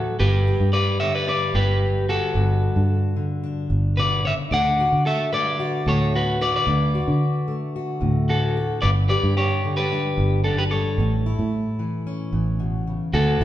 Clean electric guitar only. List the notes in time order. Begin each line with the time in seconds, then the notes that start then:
Already playing: F#4 A4
0.20 G4 B4
0.73 B4 D5
1.00 C#5 E5
1.14 B4 D5
1.28 B4 D5
1.55 G4 B4
2.09 F#4 A4
3.97 B4 D5
4.25 C#5 E5
4.52 D5 F#5
5.06 A4 E5
5.33 B4 D5
5.88 A4 C#5
6.16 F#4 B4
6.42 B4 D5
6.56 B4 D5
8.29 F#4 A4
8.82 B4 D5
9.09 B4 D5
9.37 G4 C#5
9.77 G4 B4
10.44 D4 A4
10.58 G4 B4
10.71 A4 C#5
13.14 F#4 A4